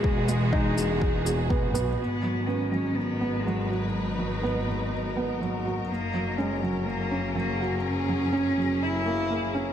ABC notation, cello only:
X:1
M:4/4
L:1/8
Q:1/4=123
K:G#m
V:1 name="Cello"
G,6- G, z | B,2 C C B,2 G, F,- | F,6- F, z | A,2 G, F, A,2 A,2 |
C4 E3 z |]